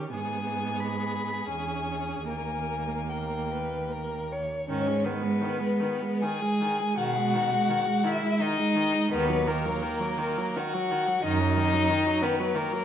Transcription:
0.00 0.14 D#3 medium
0.13 1.49 G#2 soft
0.13 1.46 B3 soft
0.13 2.25 G#4 soft
0.13 0.81 G#5 medium
0.80 1.48 B5 medium
1.48 2.27 E2 soft
1.48 2.24 C#4 soft
1.48 2.26 G#5 medium
2.27 4.45 D#2 soft
2.27 4.45 A#3 soft
2.27 2.99 A#4 soft
2.27 3.10 G#5 medium
3.09 3.53 A#4 soft
3.09 4.31 G5 soft
3.51 3.94 B4 soft
3.92 4.33 A#4 soft
4.32 4.68 C#5 soft
4.69 5.29 G#2 medium
4.69 4.89 D#3 medium
4.69 5.07 C#4 medium
4.69 5.06 C#5 medium
4.88 5.06 G#3 soft
5.05 5.24 D#3 soft
5.05 6.24 B3 medium
5.05 6.22 B4 medium
5.22 5.43 G#3 soft
5.41 5.61 D#3 soft
5.60 5.82 G#3 soft
5.80 6.03 D#3 soft
6.02 6.24 G#3 soft
6.22 6.43 D#3 soft
6.22 6.97 G#4 medium
6.22 6.99 G#5 medium
6.41 6.62 G#3 soft
6.61 6.81 D#3 soft
6.79 6.97 G#3 soft
6.97 7.58 B2 medium
6.97 7.18 D#3 medium
6.97 8.06 F#4 medium
6.97 8.08 F#5 medium
7.16 7.36 G#3 soft
7.34 7.52 D#3 soft
7.51 7.70 G#3 soft
7.69 7.87 D#3 soft
7.86 8.05 G#3 medium
8.04 8.24 D#3 medium
8.04 8.42 E4 medium
8.04 8.43 E5 medium
8.23 8.42 G#3 medium
8.41 8.60 D#3 medium
8.41 9.12 D#4 medium
8.41 9.12 D#5 medium
8.59 8.77 G#3 soft
8.76 8.95 D#3 medium
8.94 9.10 G#3 soft
9.11 9.70 D#2 medium
9.11 9.31 D#3 medium
9.11 9.50 B3 medium
9.11 9.49 B4 medium
9.29 9.49 F#3 medium
9.47 9.67 D#3 medium
9.47 10.59 A#3 medium
9.47 10.59 A#4 medium
9.65 9.84 F#3 medium
9.82 10.01 D#3 medium
10.00 10.19 F#3 medium
10.18 10.39 D#3 medium
10.37 10.58 F#3 medium
10.56 10.75 D#3 medium
10.56 11.25 F#4 medium
10.56 11.24 F#5 medium
10.74 10.93 F#3 medium
10.91 11.09 D#3 medium
11.07 11.23 F#3 medium
11.23 11.79 F#2 medium
11.23 11.42 D#3 medium
11.23 12.23 D#4 medium
11.23 12.25 D#5 medium
11.40 11.58 F#3 medium
11.56 11.74 D#3 medium
11.73 11.92 F#3 medium
11.90 12.08 D#3 medium
12.06 12.24 F#3 medium
12.22 12.41 D#3 medium
12.22 12.56 B3 medium
12.22 12.58 B4 medium
12.40 12.57 F#3 medium
12.54 12.74 D#3 medium
12.54 12.85 A#3 medium
12.54 12.85 A#4 medium
12.72 12.85 F#3 medium

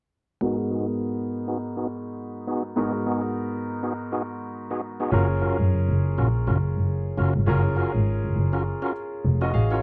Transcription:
0.41 2.73 G#2 medium
0.41 0.57 B3 medium
0.41 2.73 B3 medium
0.41 0.57 D#4 medium
0.41 2.73 D#4 medium
0.41 0.57 F#4 medium
0.41 2.73 F#4 medium
0.41 0.57 G#4 loud
0.41 2.74 A#4 medium
0.71 0.87 B3 medium
0.71 0.87 D#4 medium
0.71 0.87 F#4 medium
0.71 0.87 G#4 medium
1.47 1.58 B3 medium
1.47 1.58 D#4 medium
1.47 1.58 F#4 medium
1.47 1.58 G#4 medium
1.77 1.87 B3 medium
1.77 1.87 D#4 medium
1.77 1.87 F#4 medium
1.77 1.87 G#4 medium
2.47 2.63 B3 medium
2.47 2.63 D#4 medium
2.47 2.63 F#4 medium
2.47 2.63 G#4 medium
2.76 5.08 G#2 medium
2.76 2.93 B3 medium
2.76 5.08 B3 medium
2.76 2.93 D#4 medium
2.76 5.08 D#4 medium
2.76 2.93 F#4 medium
2.76 5.09 F#4 medium
2.76 2.93 G#4 loud
2.76 5.09 A#4 medium
3.06 3.22 B3 medium
3.06 3.22 D#4 medium
3.06 3.22 F#4 medium
3.06 3.22 G#4 medium
3.83 3.93 B3 medium
3.83 3.93 D#4 medium
3.83 3.93 F#4 medium
3.83 3.93 G#4 medium
4.12 4.22 B3 medium
4.12 4.22 D#4 medium
4.12 4.23 F#4 medium
4.12 4.23 G#4 medium
4.71 4.81 B3 medium
4.71 4.81 D#4 medium
4.71 4.81 F#4 medium
4.71 4.81 G#4 medium
5.00 5.11 B3 medium
5.00 5.11 D#4 medium
5.00 5.11 F#4 medium
5.00 5.11 G#4 medium
5.11 5.27 F#1 medium
5.11 7.43 C#4 medium
5.11 5.28 C#4 medium
5.11 5.28 F4 medium
5.11 7.43 F4 medium
5.11 5.28 F#4 medium
5.11 7.44 G#4 medium
5.11 5.28 A#4 loud
5.11 7.44 A#4 medium
5.41 5.55 F#2 soft
5.41 5.57 C#4 medium
5.41 5.57 F4 medium
5.41 5.57 F#4 medium
5.41 5.57 A#4 medium
5.59 5.69 F#2 medium
5.71 5.84 F#1 soft
5.89 5.98 F#1 medium
6.18 6.28 A#1 medium
6.18 6.28 C#4 medium
6.18 6.28 F4 medium
6.18 6.28 F#4 medium
6.18 6.29 A#4 medium
6.47 6.57 F#1 medium
6.47 6.58 C#4 medium
6.47 6.58 F4 medium
6.47 6.58 F#4 medium
6.47 6.58 A#4 medium
6.77 6.87 F#1 medium
7.17 7.33 F#1 medium
7.17 7.33 C#4 medium
7.17 7.34 F4 medium
7.17 7.34 F#4 medium
7.17 7.34 A#4 medium
7.36 7.45 G1 medium
7.46 7.62 F#1 medium
7.46 9.78 C#4 medium
7.46 7.63 C#4 medium
7.46 7.63 F4 medium
7.46 8.91 F4 medium
7.46 7.63 F#4 medium
7.46 8.92 G#4 medium
7.46 7.63 A#4 loud
7.46 8.92 A#4 medium
7.76 7.92 C#4 medium
7.76 7.92 F4 medium
7.76 7.92 F#4 medium
7.76 7.93 A#4 medium
7.95 8.04 G#1 medium
8.24 8.33 F#1 soft
8.36 8.50 F#1 medium
8.53 8.63 C#4 medium
8.53 8.63 F4 medium
8.53 8.64 F#4 medium
8.53 8.64 A#4 medium
8.82 8.93 C#4 medium
8.82 8.93 F4 medium
8.82 8.93 F#4 medium
8.82 8.93 A#4 medium
9.24 9.39 F1 medium
9.41 9.52 C#4 medium
9.41 9.52 F4 medium
9.41 9.52 F#4 medium
9.41 9.53 F#4 medium
9.41 9.52 A#4 medium
9.41 9.53 D#5 medium
9.54 9.68 A1 medium
9.54 9.71 G#4 medium
9.54 9.70 F5 medium
9.71 9.81 C#4 medium
9.71 9.81 F4 medium
9.71 9.82 F4 medium
9.71 9.81 F#4 medium
9.71 9.81 A#4 medium
9.71 9.82 C#5 medium

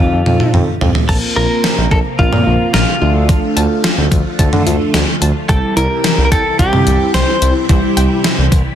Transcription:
0.00 0.21 C4 medium
0.00 0.21 D#4 medium
0.00 0.21 F4 medium
0.00 0.50 F4 medium
0.00 0.21 A4 medium
0.13 0.23 F2 medium
0.26 0.36 F2 loud
0.26 0.69 C4 medium
0.26 0.69 D#4 medium
0.26 0.69 F4 medium
0.26 0.69 A4 medium
0.26 mid tom medium
0.40 mid tom medium
0.54 0.64 F2 loud
0.54 mid tom medium
0.81 0.91 F2 loud
0.81 floor tom medium
0.95 floor tom medium
1.09 1.19 A#1 loud
1.09 3.00 C3 medium
1.09 5.45 F3 medium
1.09 1.65 A#3 medium
1.09 3.00 A#3 medium
1.09 1.65 C4 medium
1.09 1.65 F4 medium
1.09 5.45 F4 medium
1.09 1.16 A4 loud
1.09 1.65 A#4 medium
1.09 1.23 A#5 loud
1.09 kick loud
1.09 crash medium
1.36 1.46 A#1 loud
1.36 1.51 F4 medium
1.36 1.91 A#4 loud
1.64 1.78 F3 medium
1.64 snare loud
1.78 1.88 A#1 loud
1.91 2.01 A#1 medium
1.91 1.99 A4 medium
1.91 2.06 A#5 medium
1.91 kick medium
2.19 2.29 A#1 loud
2.19 2.76 A#3 medium
2.19 2.76 C4 medium
2.19 2.73 F4 medium
2.19 2.76 F4 medium
2.19 2.76 A#4 medium
2.19 kick medium
2.33 2.43 A#2 loud
2.33 mid tom medium
2.46 2.56 A#1 loud
2.74 2.84 A#1 loud
2.74 3.12 F4 medium
2.74 2.88 A#5 medium
2.74 snare loud
3.01 3.31 D2 medium
3.01 5.47 D3 medium
3.01 3.90 A3 medium
3.01 5.47 A3 medium
3.01 3.90 D4 medium
3.01 3.90 F4 medium
3.01 3.16 F4 medium
3.01 3.90 A4 medium
3.29 3.43 F3 medium
3.29 kick loud
3.29 closed hi-hat medium
3.57 3.67 D2 loud
3.57 3.71 A5 medium
3.57 closed hi-hat medium
3.84 3.98 F4 medium
3.84 snare loud
3.84 closed hi-hat medium
3.98 4.08 D2 loud
4.12 4.22 D2 loud
4.12 4.26 F3 medium
4.12 kick loud
4.12 closed hi-hat medium
4.39 4.49 D2 loud
4.39 4.96 A3 medium
4.39 4.96 D4 medium
4.39 4.96 F4 medium
4.39 4.96 A4 loud
4.39 4.53 A5 loud
4.39 kick medium
4.39 closed hi-hat medium
4.53 4.63 D3 loud
4.53 mid tom medium
4.67 4.77 D2 loud
4.67 4.81 F4 medium
4.67 closed hi-hat medium
4.94 5.04 D2 loud
4.94 5.08 F3 medium
4.94 snare loud
4.94 closed hi-hat medium
5.22 5.32 D2 medium
5.22 5.36 A5 medium
5.22 closed hi-hat medium
5.49 5.59 C2 loud
5.49 8.75 C3 medium
5.49 8.75 E3 medium
5.49 6.06 G3 medium
5.49 8.75 G3 medium
5.49 6.06 C4 medium
5.49 6.06 E4 medium
5.49 8.75 E4 medium
5.49 6.06 G4 medium
5.49 5.76 A4 medium
5.49 5.63 G5 loud
5.49 kick loud
5.49 closed hi-hat medium
5.77 5.87 C2 loud
5.77 5.91 E4 medium
5.77 6.24 A#4 medium
5.77 closed hi-hat medium
6.04 6.18 E3 medium
6.04 snare loud
6.04 closed hi-hat medium
6.18 6.28 C2 loud
6.25 6.31 A#4 medium
6.32 6.42 C2 medium
6.32 6.59 A4 medium
6.32 6.46 G5 medium
6.32 kick medium
6.32 closed hi-hat medium
6.59 6.69 C2 loud
6.59 7.16 G3 medium
6.59 7.16 C4 medium
6.59 7.16 E4 medium
6.59 7.16 G4 medium
6.59 7.10 G4 medium
6.59 kick medium
6.59 closed hi-hat medium
6.73 6.83 C3 medium
6.73 mid tom loud
6.87 6.97 C2 loud
6.87 closed hi-hat medium
7.14 7.24 C2 loud
7.14 7.53 C5 loud
7.14 7.28 G5 loud
7.14 snare loud
7.14 closed hi-hat medium
7.42 7.52 C2 loud
7.42 7.56 E4 medium
7.42 closed hi-hat medium
7.69 7.79 C2 loud
7.69 7.83 E3 loud
7.69 8.26 G3 medium
7.69 8.26 C4 medium
7.69 8.26 E4 medium
7.69 8.26 G4 loud
7.69 kick loud
7.69 closed hi-hat medium
7.97 8.07 C2 loud
7.97 8.11 G5 medium
7.97 closed hi-hat medium
8.24 8.39 E4 medium
8.24 snare loud
8.24 closed hi-hat medium
8.38 8.48 C2 loud
8.52 8.62 C2 loud
8.52 8.66 E3 medium
8.52 kick loud
8.52 closed hi-hat medium

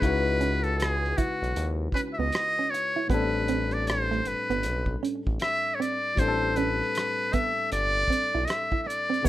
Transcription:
0.00 1.14 C#2 loud
0.00 3.04 C#3 medium
0.00 3.05 G#3 soft
0.00 3.06 D#4 soft
0.00 3.06 E4 medium
0.00 0.65 B4 medium
0.00 kick loud
0.00 closed hi-hat medium
0.05 3.07 F#4 medium
0.05 3.08 B4 medium
0.41 0.60 C#4 medium
0.41 closed hi-hat medium
0.63 0.79 A4 medium
0.63 closed hi-hat soft
0.78 1.19 G#4 medium
0.78 closed hi-hat medium
0.82 cross-stick loud
1.05 cross-stick soft
1.17 1.28 B1 soft
1.17 1.37 E4 medium
1.17 1.70 F#4 medium
1.17 kick medium
1.17 closed hi-hat medium
1.42 1.54 B1 medium
1.42 closed hi-hat soft
1.56 1.88 D#2 loud
1.56 muted hollow-body jazz guitar stroke soft
1.56 closed hi-hat medium
1.92 2.14 C#4 medium
1.92 2.01 B4 medium
1.92 kick medium
1.97 closed hi-hat medium
2.13 2.20 E5 medium
2.18 2.31 C#2 medium
2.18 2.31 B3 medium
2.18 2.72 D#5 medium
2.32 cross-stick loud
2.32 closed hi-hat medium
2.59 2.70 C#4 medium
2.70 3.09 C#5 medium
2.70 muted hollow-body jazz guitar stroke soft
2.74 closed hi-hat medium
2.96 3.08 E4 medium
3.08 4.21 A1 loud
3.08 6.12 A2 medium
3.08 6.13 G3 soft
3.08 3.30 B3 medium
3.08 6.14 C4 medium
3.08 3.75 B4 medium
3.08 kick loud
3.08 closed hi-hat medium
3.12 6.15 D4 medium
3.12 6.16 A4 medium
3.48 3.68 C4 medium
3.48 closed hi-hat medium
3.71 3.89 D5 medium
3.71 closed hi-hat soft
3.87 4.29 C5 medium
3.87 cross-stick loud
3.87 closed hi-hat medium
4.11 4.23 A3 medium
4.11 cross-stick soft
4.25 4.35 G1 soft
4.25 5.03 B4 medium
4.25 muted hollow-body jazz guitar stroke soft
4.25 closed hi-hat medium
4.50 4.66 G1 medium
4.50 4.62 B3 medium
4.50 closed hi-hat soft
4.63 4.96 B1 loud
4.63 closed hi-hat medium
4.86 kick medium
5.03 5.22 C#4 medium
5.03 closed hi-hat medium
5.27 5.39 A1 medium
5.27 kick medium
5.40 5.77 E5 medium
5.40 cross-stick loud
5.40 closed hi-hat medium
5.75 5.83 C#5 medium
5.80 5.99 C4 medium
5.80 6.21 D5 medium
5.80 closed hi-hat medium
6.15 6.82 A1 loud
6.15 9.20 A2 medium
6.15 9.21 G3 medium
6.15 9.22 C4 soft
6.15 kick loud
6.15 closed hi-hat medium
6.19 9.22 D4 soft
6.19 6.27 A4 medium
6.19 6.58 C5 medium
6.28 9.26 A4 medium
6.56 6.76 C#4 medium
6.56 7.35 B4 medium
6.56 closed hi-hat medium
6.82 cross-stick soft
6.95 cross-stick loud
6.95 closed hi-hat medium
7.33 7.53 B3 medium
7.33 7.72 E5 medium
7.33 kick medium
7.33 closed hi-hat medium
7.72 8.04 G1 loud
7.72 8.46 D5 loud
7.72 muted hollow-body jazz guitar stroke soft
7.72 closed hi-hat medium
8.08 8.30 C4 medium
8.08 kick medium
8.12 closed hi-hat medium
8.35 8.46 B1 medium
8.35 8.46 E4 medium
8.45 8.50 D#5 medium
8.45 8.82 E5 medium
8.45 closed hi-hat medium
8.50 cross-stick loud
8.72 8.84 E4 medium
8.72 kick medium
8.82 8.89 E5 medium
8.86 9.27 D5 medium
8.86 muted hollow-body jazz guitar stroke soft
8.86 closed hi-hat medium
9.10 9.22 C4 medium
9.14 closed hi-hat soft
9.23 9.29 C#2 loud
9.23 9.29 C#3 medium
9.23 9.29 G#3 soft
9.23 9.29 B3 medium
9.23 9.29 D#4 soft
9.23 9.29 C#5 medium
9.23 kick loud

